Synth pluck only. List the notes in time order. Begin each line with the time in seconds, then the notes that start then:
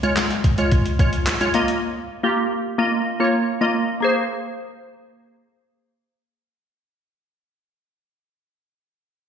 0.03 G#3 F4 C#5
0.58 G#3 F4 C#5
0.99 G#3 F4 C#5
1.41 G#3 F4 C#5
1.54 A#3 F4 D#5
2.23 A#3 F4 G4
2.78 A#3 F4 D#5
3.20 A#3 F4 C#5
3.61 A#3 F4 D#5
4.00 A#3 G#4 C5